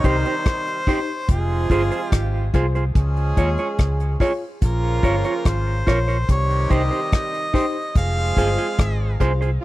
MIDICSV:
0, 0, Header, 1, 7, 480
1, 0, Start_track
1, 0, Key_signature, -4, "minor"
1, 0, Tempo, 832524
1, 744, Time_signature, 4, 2, 24, 8
1, 5561, End_track
2, 0, Start_track
2, 0, Title_t, "Harmonica"
2, 0, Program_c, 0, 22
2, 35, Note_on_c, 0, 72, 101
2, 750, Note_off_c, 0, 72, 0
2, 756, Note_on_c, 0, 68, 87
2, 1212, Note_off_c, 0, 68, 0
2, 1212, Note_on_c, 0, 67, 87
2, 1447, Note_off_c, 0, 67, 0
2, 2681, Note_on_c, 0, 70, 83
2, 3160, Note_on_c, 0, 72, 86
2, 3169, Note_off_c, 0, 70, 0
2, 3632, Note_off_c, 0, 72, 0
2, 3640, Note_on_c, 0, 73, 96
2, 3877, Note_on_c, 0, 75, 103
2, 3886, Note_off_c, 0, 73, 0
2, 4591, Note_off_c, 0, 75, 0
2, 4596, Note_on_c, 0, 77, 105
2, 5288, Note_off_c, 0, 77, 0
2, 5561, End_track
3, 0, Start_track
3, 0, Title_t, "Clean electric guitar"
3, 0, Program_c, 1, 27
3, 23, Note_on_c, 1, 63, 69
3, 27, Note_on_c, 1, 67, 90
3, 29, Note_on_c, 1, 72, 90
3, 87, Note_off_c, 1, 63, 0
3, 89, Note_off_c, 1, 67, 0
3, 90, Note_off_c, 1, 72, 0
3, 151, Note_on_c, 1, 72, 59
3, 155, Note_on_c, 1, 67, 55
3, 158, Note_on_c, 1, 63, 51
3, 196, Note_off_c, 1, 72, 0
3, 198, Note_off_c, 1, 67, 0
3, 199, Note_off_c, 1, 63, 0
3, 505, Note_on_c, 1, 63, 79
3, 510, Note_on_c, 1, 67, 84
3, 512, Note_on_c, 1, 72, 92
3, 568, Note_off_c, 1, 63, 0
3, 570, Note_off_c, 1, 67, 0
3, 571, Note_off_c, 1, 72, 0
3, 984, Note_on_c, 1, 65, 80
3, 988, Note_on_c, 1, 68, 90
3, 990, Note_on_c, 1, 72, 84
3, 1047, Note_off_c, 1, 65, 0
3, 1049, Note_off_c, 1, 68, 0
3, 1050, Note_off_c, 1, 72, 0
3, 1105, Note_on_c, 1, 72, 57
3, 1108, Note_on_c, 1, 68, 49
3, 1111, Note_on_c, 1, 65, 47
3, 1153, Note_off_c, 1, 72, 0
3, 1155, Note_off_c, 1, 68, 0
3, 1156, Note_off_c, 1, 65, 0
3, 1466, Note_on_c, 1, 65, 79
3, 1469, Note_on_c, 1, 68, 77
3, 1474, Note_on_c, 1, 72, 78
3, 1528, Note_off_c, 1, 65, 0
3, 1530, Note_off_c, 1, 68, 0
3, 1532, Note_off_c, 1, 72, 0
3, 1586, Note_on_c, 1, 72, 57
3, 1591, Note_on_c, 1, 68, 54
3, 1593, Note_on_c, 1, 65, 46
3, 1634, Note_off_c, 1, 72, 0
3, 1636, Note_off_c, 1, 68, 0
3, 1637, Note_off_c, 1, 65, 0
3, 1945, Note_on_c, 1, 65, 66
3, 1949, Note_on_c, 1, 68, 80
3, 1951, Note_on_c, 1, 73, 87
3, 2008, Note_off_c, 1, 65, 0
3, 2010, Note_off_c, 1, 68, 0
3, 2011, Note_off_c, 1, 73, 0
3, 2069, Note_on_c, 1, 73, 61
3, 2072, Note_on_c, 1, 68, 54
3, 2075, Note_on_c, 1, 65, 47
3, 2115, Note_off_c, 1, 73, 0
3, 2117, Note_off_c, 1, 68, 0
3, 2118, Note_off_c, 1, 65, 0
3, 2423, Note_on_c, 1, 65, 81
3, 2427, Note_on_c, 1, 68, 89
3, 2430, Note_on_c, 1, 73, 94
3, 2487, Note_off_c, 1, 65, 0
3, 2489, Note_off_c, 1, 68, 0
3, 2490, Note_off_c, 1, 73, 0
3, 2901, Note_on_c, 1, 65, 75
3, 2904, Note_on_c, 1, 70, 91
3, 2908, Note_on_c, 1, 73, 87
3, 2966, Note_off_c, 1, 65, 0
3, 2968, Note_off_c, 1, 70, 0
3, 2969, Note_off_c, 1, 73, 0
3, 3026, Note_on_c, 1, 73, 69
3, 3029, Note_on_c, 1, 70, 62
3, 3034, Note_on_c, 1, 65, 53
3, 3074, Note_off_c, 1, 73, 0
3, 3075, Note_off_c, 1, 70, 0
3, 3078, Note_off_c, 1, 65, 0
3, 3383, Note_on_c, 1, 65, 81
3, 3388, Note_on_c, 1, 70, 80
3, 3390, Note_on_c, 1, 73, 90
3, 3447, Note_off_c, 1, 65, 0
3, 3449, Note_off_c, 1, 70, 0
3, 3450, Note_off_c, 1, 73, 0
3, 3506, Note_on_c, 1, 73, 56
3, 3509, Note_on_c, 1, 70, 47
3, 3513, Note_on_c, 1, 65, 46
3, 3554, Note_off_c, 1, 73, 0
3, 3555, Note_off_c, 1, 70, 0
3, 3557, Note_off_c, 1, 65, 0
3, 3863, Note_on_c, 1, 63, 81
3, 3866, Note_on_c, 1, 67, 86
3, 3869, Note_on_c, 1, 72, 84
3, 3927, Note_off_c, 1, 63, 0
3, 3929, Note_off_c, 1, 67, 0
3, 3930, Note_off_c, 1, 72, 0
3, 3984, Note_on_c, 1, 72, 61
3, 3989, Note_on_c, 1, 67, 59
3, 3992, Note_on_c, 1, 63, 52
3, 4033, Note_off_c, 1, 72, 0
3, 4035, Note_off_c, 1, 67, 0
3, 4037, Note_off_c, 1, 63, 0
3, 4344, Note_on_c, 1, 63, 73
3, 4348, Note_on_c, 1, 67, 79
3, 4351, Note_on_c, 1, 72, 87
3, 4407, Note_off_c, 1, 63, 0
3, 4409, Note_off_c, 1, 67, 0
3, 4411, Note_off_c, 1, 72, 0
3, 4826, Note_on_c, 1, 65, 79
3, 4830, Note_on_c, 1, 68, 85
3, 4832, Note_on_c, 1, 72, 84
3, 4888, Note_off_c, 1, 65, 0
3, 4890, Note_off_c, 1, 68, 0
3, 4892, Note_off_c, 1, 72, 0
3, 4946, Note_on_c, 1, 72, 64
3, 4950, Note_on_c, 1, 68, 62
3, 4953, Note_on_c, 1, 65, 50
3, 4994, Note_off_c, 1, 72, 0
3, 4996, Note_off_c, 1, 68, 0
3, 4998, Note_off_c, 1, 65, 0
3, 5305, Note_on_c, 1, 65, 88
3, 5308, Note_on_c, 1, 68, 90
3, 5311, Note_on_c, 1, 72, 93
3, 5368, Note_off_c, 1, 65, 0
3, 5369, Note_off_c, 1, 68, 0
3, 5371, Note_off_c, 1, 72, 0
3, 5424, Note_on_c, 1, 72, 57
3, 5428, Note_on_c, 1, 68, 52
3, 5432, Note_on_c, 1, 65, 45
3, 5473, Note_off_c, 1, 72, 0
3, 5475, Note_off_c, 1, 68, 0
3, 5477, Note_off_c, 1, 65, 0
3, 5561, End_track
4, 0, Start_track
4, 0, Title_t, "Upright piano"
4, 0, Program_c, 2, 0
4, 21, Note_on_c, 2, 63, 82
4, 25, Note_on_c, 2, 67, 73
4, 28, Note_on_c, 2, 72, 95
4, 139, Note_off_c, 2, 63, 0
4, 141, Note_off_c, 2, 67, 0
4, 142, Note_off_c, 2, 72, 0
4, 501, Note_on_c, 2, 63, 84
4, 504, Note_on_c, 2, 67, 78
4, 507, Note_on_c, 2, 72, 99
4, 619, Note_off_c, 2, 63, 0
4, 620, Note_off_c, 2, 67, 0
4, 622, Note_off_c, 2, 72, 0
4, 980, Note_on_c, 2, 65, 79
4, 983, Note_on_c, 2, 68, 76
4, 987, Note_on_c, 2, 72, 88
4, 1098, Note_off_c, 2, 65, 0
4, 1100, Note_off_c, 2, 68, 0
4, 1102, Note_off_c, 2, 72, 0
4, 1460, Note_on_c, 2, 65, 83
4, 1463, Note_on_c, 2, 68, 75
4, 1466, Note_on_c, 2, 72, 89
4, 1577, Note_off_c, 2, 68, 0
4, 1577, Note_off_c, 2, 72, 0
4, 1578, Note_off_c, 2, 65, 0
4, 1586, Note_on_c, 2, 68, 23
4, 1586, Note_on_c, 2, 72, 24
4, 1633, Note_off_c, 2, 68, 0
4, 1633, Note_off_c, 2, 72, 0
4, 1940, Note_on_c, 2, 65, 81
4, 1944, Note_on_c, 2, 68, 77
4, 1947, Note_on_c, 2, 73, 93
4, 2059, Note_off_c, 2, 65, 0
4, 2061, Note_off_c, 2, 68, 0
4, 2062, Note_off_c, 2, 73, 0
4, 2421, Note_on_c, 2, 65, 83
4, 2424, Note_on_c, 2, 68, 78
4, 2428, Note_on_c, 2, 73, 98
4, 2539, Note_off_c, 2, 65, 0
4, 2541, Note_off_c, 2, 68, 0
4, 2542, Note_off_c, 2, 73, 0
4, 2901, Note_on_c, 2, 65, 84
4, 2904, Note_on_c, 2, 70, 73
4, 2909, Note_on_c, 2, 73, 92
4, 3019, Note_off_c, 2, 65, 0
4, 3021, Note_off_c, 2, 70, 0
4, 3023, Note_off_c, 2, 73, 0
4, 3382, Note_on_c, 2, 65, 82
4, 3385, Note_on_c, 2, 70, 77
4, 3389, Note_on_c, 2, 73, 86
4, 3500, Note_off_c, 2, 65, 0
4, 3501, Note_off_c, 2, 70, 0
4, 3503, Note_off_c, 2, 73, 0
4, 3860, Note_on_c, 2, 63, 84
4, 3865, Note_on_c, 2, 67, 74
4, 3867, Note_on_c, 2, 72, 88
4, 3979, Note_off_c, 2, 63, 0
4, 3981, Note_off_c, 2, 67, 0
4, 3982, Note_off_c, 2, 72, 0
4, 4340, Note_on_c, 2, 63, 92
4, 4344, Note_on_c, 2, 67, 85
4, 4348, Note_on_c, 2, 72, 97
4, 4459, Note_off_c, 2, 63, 0
4, 4461, Note_off_c, 2, 67, 0
4, 4463, Note_off_c, 2, 72, 0
4, 4821, Note_on_c, 2, 65, 85
4, 4825, Note_on_c, 2, 68, 77
4, 4829, Note_on_c, 2, 72, 89
4, 4939, Note_off_c, 2, 65, 0
4, 4941, Note_off_c, 2, 68, 0
4, 4943, Note_off_c, 2, 72, 0
4, 5301, Note_on_c, 2, 65, 77
4, 5306, Note_on_c, 2, 68, 72
4, 5308, Note_on_c, 2, 72, 87
4, 5419, Note_off_c, 2, 65, 0
4, 5421, Note_off_c, 2, 72, 0
4, 5422, Note_off_c, 2, 68, 0
4, 5430, Note_on_c, 2, 68, 22
4, 5430, Note_on_c, 2, 72, 26
4, 5476, Note_off_c, 2, 68, 0
4, 5476, Note_off_c, 2, 72, 0
4, 5561, End_track
5, 0, Start_track
5, 0, Title_t, "Horn section"
5, 0, Program_c, 3, 61
5, 0, Note_on_c, 3, 48, 82
5, 0, Note_on_c, 3, 51, 84
5, 0, Note_on_c, 3, 55, 81
5, 0, Note_on_c, 3, 63, 92
5, 488, Note_off_c, 3, 48, 0
5, 488, Note_off_c, 3, 51, 0
5, 488, Note_off_c, 3, 55, 0
5, 488, Note_off_c, 3, 63, 0
5, 741, Note_on_c, 3, 56, 75
5, 742, Note_on_c, 3, 48, 76
5, 742, Note_on_c, 3, 53, 77
5, 742, Note_on_c, 3, 65, 83
5, 1448, Note_off_c, 3, 48, 0
5, 1448, Note_off_c, 3, 53, 0
5, 1448, Note_off_c, 3, 56, 0
5, 1448, Note_off_c, 3, 65, 0
5, 1699, Note_on_c, 3, 56, 82
5, 1699, Note_on_c, 3, 68, 89
5, 1700, Note_on_c, 3, 61, 83
5, 1701, Note_on_c, 3, 53, 82
5, 2407, Note_off_c, 3, 56, 0
5, 2407, Note_off_c, 3, 68, 0
5, 2408, Note_off_c, 3, 53, 0
5, 2408, Note_off_c, 3, 61, 0
5, 2665, Note_on_c, 3, 49, 80
5, 2665, Note_on_c, 3, 53, 85
5, 2665, Note_on_c, 3, 58, 79
5, 2665, Note_on_c, 3, 65, 92
5, 3370, Note_off_c, 3, 49, 0
5, 3370, Note_off_c, 3, 53, 0
5, 3370, Note_off_c, 3, 58, 0
5, 3370, Note_off_c, 3, 65, 0
5, 3628, Note_on_c, 3, 51, 88
5, 3629, Note_on_c, 3, 48, 85
5, 3629, Note_on_c, 3, 55, 81
5, 3629, Note_on_c, 3, 67, 89
5, 4332, Note_off_c, 3, 48, 0
5, 4332, Note_off_c, 3, 51, 0
5, 4332, Note_off_c, 3, 55, 0
5, 4332, Note_off_c, 3, 67, 0
5, 4588, Note_on_c, 3, 53, 79
5, 4588, Note_on_c, 3, 56, 78
5, 4588, Note_on_c, 3, 60, 82
5, 4588, Note_on_c, 3, 68, 85
5, 5292, Note_off_c, 3, 53, 0
5, 5292, Note_off_c, 3, 56, 0
5, 5292, Note_off_c, 3, 60, 0
5, 5292, Note_off_c, 3, 68, 0
5, 5543, Note_on_c, 3, 53, 78
5, 5543, Note_on_c, 3, 65, 85
5, 5544, Note_on_c, 3, 49, 74
5, 5544, Note_on_c, 3, 56, 80
5, 5561, Note_off_c, 3, 49, 0
5, 5561, Note_off_c, 3, 53, 0
5, 5561, Note_off_c, 3, 56, 0
5, 5561, Note_off_c, 3, 65, 0
5, 5561, End_track
6, 0, Start_track
6, 0, Title_t, "Fingered electric bass"
6, 0, Program_c, 4, 33
6, 27, Note_on_c, 4, 36, 84
6, 132, Note_off_c, 4, 36, 0
6, 745, Note_on_c, 4, 29, 91
6, 952, Note_off_c, 4, 29, 0
6, 983, Note_on_c, 4, 31, 82
6, 1090, Note_off_c, 4, 31, 0
6, 1227, Note_on_c, 4, 32, 89
6, 1433, Note_off_c, 4, 32, 0
6, 1466, Note_on_c, 4, 36, 78
6, 1673, Note_off_c, 4, 36, 0
6, 1706, Note_on_c, 4, 37, 105
6, 1913, Note_off_c, 4, 37, 0
6, 1947, Note_on_c, 4, 39, 88
6, 2052, Note_off_c, 4, 39, 0
6, 2189, Note_on_c, 4, 37, 81
6, 2394, Note_off_c, 4, 37, 0
6, 2667, Note_on_c, 4, 34, 96
6, 2874, Note_off_c, 4, 34, 0
6, 2905, Note_on_c, 4, 31, 89
6, 3011, Note_off_c, 4, 31, 0
6, 3148, Note_on_c, 4, 32, 89
6, 3354, Note_off_c, 4, 32, 0
6, 3389, Note_on_c, 4, 34, 84
6, 3595, Note_off_c, 4, 34, 0
6, 3629, Note_on_c, 4, 36, 100
6, 3835, Note_off_c, 4, 36, 0
6, 3871, Note_on_c, 4, 36, 87
6, 3974, Note_off_c, 4, 36, 0
6, 4590, Note_on_c, 4, 29, 97
6, 4795, Note_off_c, 4, 29, 0
6, 4827, Note_on_c, 4, 31, 78
6, 4933, Note_off_c, 4, 31, 0
6, 5070, Note_on_c, 4, 32, 88
6, 5276, Note_off_c, 4, 32, 0
6, 5310, Note_on_c, 4, 36, 89
6, 5516, Note_off_c, 4, 36, 0
6, 5561, End_track
7, 0, Start_track
7, 0, Title_t, "Drums"
7, 23, Note_on_c, 9, 42, 63
7, 24, Note_on_c, 9, 36, 89
7, 81, Note_off_c, 9, 36, 0
7, 81, Note_off_c, 9, 42, 0
7, 145, Note_on_c, 9, 42, 53
7, 203, Note_off_c, 9, 42, 0
7, 262, Note_on_c, 9, 42, 79
7, 264, Note_on_c, 9, 36, 110
7, 267, Note_on_c, 9, 37, 99
7, 319, Note_off_c, 9, 42, 0
7, 322, Note_off_c, 9, 36, 0
7, 325, Note_off_c, 9, 37, 0
7, 386, Note_on_c, 9, 42, 57
7, 444, Note_off_c, 9, 42, 0
7, 502, Note_on_c, 9, 36, 82
7, 506, Note_on_c, 9, 46, 62
7, 559, Note_off_c, 9, 36, 0
7, 564, Note_off_c, 9, 46, 0
7, 741, Note_on_c, 9, 42, 98
7, 742, Note_on_c, 9, 36, 110
7, 799, Note_off_c, 9, 42, 0
7, 800, Note_off_c, 9, 36, 0
7, 979, Note_on_c, 9, 36, 84
7, 984, Note_on_c, 9, 42, 72
7, 1037, Note_off_c, 9, 36, 0
7, 1042, Note_off_c, 9, 42, 0
7, 1103, Note_on_c, 9, 42, 52
7, 1161, Note_off_c, 9, 42, 0
7, 1222, Note_on_c, 9, 42, 99
7, 1223, Note_on_c, 9, 36, 107
7, 1227, Note_on_c, 9, 37, 111
7, 1280, Note_off_c, 9, 42, 0
7, 1281, Note_off_c, 9, 36, 0
7, 1285, Note_off_c, 9, 37, 0
7, 1462, Note_on_c, 9, 42, 66
7, 1463, Note_on_c, 9, 36, 78
7, 1520, Note_off_c, 9, 36, 0
7, 1520, Note_off_c, 9, 42, 0
7, 1585, Note_on_c, 9, 42, 47
7, 1643, Note_off_c, 9, 42, 0
7, 1702, Note_on_c, 9, 36, 101
7, 1703, Note_on_c, 9, 42, 84
7, 1760, Note_off_c, 9, 36, 0
7, 1760, Note_off_c, 9, 42, 0
7, 1825, Note_on_c, 9, 42, 52
7, 1883, Note_off_c, 9, 42, 0
7, 1943, Note_on_c, 9, 42, 68
7, 1944, Note_on_c, 9, 36, 86
7, 2001, Note_off_c, 9, 36, 0
7, 2001, Note_off_c, 9, 42, 0
7, 2063, Note_on_c, 9, 42, 52
7, 2120, Note_off_c, 9, 42, 0
7, 2182, Note_on_c, 9, 42, 83
7, 2185, Note_on_c, 9, 36, 109
7, 2188, Note_on_c, 9, 37, 100
7, 2240, Note_off_c, 9, 42, 0
7, 2242, Note_off_c, 9, 36, 0
7, 2245, Note_off_c, 9, 37, 0
7, 2306, Note_on_c, 9, 42, 58
7, 2363, Note_off_c, 9, 42, 0
7, 2422, Note_on_c, 9, 36, 83
7, 2426, Note_on_c, 9, 46, 64
7, 2480, Note_off_c, 9, 36, 0
7, 2483, Note_off_c, 9, 46, 0
7, 2662, Note_on_c, 9, 42, 107
7, 2663, Note_on_c, 9, 36, 113
7, 2720, Note_off_c, 9, 42, 0
7, 2721, Note_off_c, 9, 36, 0
7, 2901, Note_on_c, 9, 36, 89
7, 2907, Note_on_c, 9, 42, 71
7, 2959, Note_off_c, 9, 36, 0
7, 2964, Note_off_c, 9, 42, 0
7, 3024, Note_on_c, 9, 42, 49
7, 3081, Note_off_c, 9, 42, 0
7, 3144, Note_on_c, 9, 42, 92
7, 3145, Note_on_c, 9, 36, 118
7, 3149, Note_on_c, 9, 37, 110
7, 3202, Note_off_c, 9, 36, 0
7, 3202, Note_off_c, 9, 42, 0
7, 3206, Note_off_c, 9, 37, 0
7, 3385, Note_on_c, 9, 36, 82
7, 3386, Note_on_c, 9, 42, 67
7, 3391, Note_on_c, 9, 37, 65
7, 3443, Note_off_c, 9, 36, 0
7, 3444, Note_off_c, 9, 42, 0
7, 3449, Note_off_c, 9, 37, 0
7, 3511, Note_on_c, 9, 42, 49
7, 3568, Note_off_c, 9, 42, 0
7, 3625, Note_on_c, 9, 36, 95
7, 3625, Note_on_c, 9, 42, 89
7, 3683, Note_off_c, 9, 36, 0
7, 3683, Note_off_c, 9, 42, 0
7, 3749, Note_on_c, 9, 42, 48
7, 3806, Note_off_c, 9, 42, 0
7, 3867, Note_on_c, 9, 36, 90
7, 3868, Note_on_c, 9, 42, 64
7, 3924, Note_off_c, 9, 36, 0
7, 3925, Note_off_c, 9, 42, 0
7, 3988, Note_on_c, 9, 42, 52
7, 4046, Note_off_c, 9, 42, 0
7, 4107, Note_on_c, 9, 42, 83
7, 4108, Note_on_c, 9, 36, 98
7, 4112, Note_on_c, 9, 37, 105
7, 4165, Note_off_c, 9, 42, 0
7, 4166, Note_off_c, 9, 36, 0
7, 4170, Note_off_c, 9, 37, 0
7, 4234, Note_on_c, 9, 42, 61
7, 4292, Note_off_c, 9, 42, 0
7, 4346, Note_on_c, 9, 36, 81
7, 4352, Note_on_c, 9, 46, 66
7, 4404, Note_off_c, 9, 36, 0
7, 4409, Note_off_c, 9, 46, 0
7, 4587, Note_on_c, 9, 36, 114
7, 4588, Note_on_c, 9, 42, 107
7, 4644, Note_off_c, 9, 36, 0
7, 4646, Note_off_c, 9, 42, 0
7, 4824, Note_on_c, 9, 36, 86
7, 4830, Note_on_c, 9, 42, 67
7, 4881, Note_off_c, 9, 36, 0
7, 4888, Note_off_c, 9, 42, 0
7, 4947, Note_on_c, 9, 42, 55
7, 5004, Note_off_c, 9, 42, 0
7, 5065, Note_on_c, 9, 42, 94
7, 5066, Note_on_c, 9, 36, 110
7, 5070, Note_on_c, 9, 37, 116
7, 5123, Note_off_c, 9, 42, 0
7, 5124, Note_off_c, 9, 36, 0
7, 5128, Note_off_c, 9, 37, 0
7, 5306, Note_on_c, 9, 36, 80
7, 5306, Note_on_c, 9, 42, 65
7, 5363, Note_off_c, 9, 36, 0
7, 5364, Note_off_c, 9, 42, 0
7, 5429, Note_on_c, 9, 42, 48
7, 5487, Note_off_c, 9, 42, 0
7, 5561, End_track
0, 0, End_of_file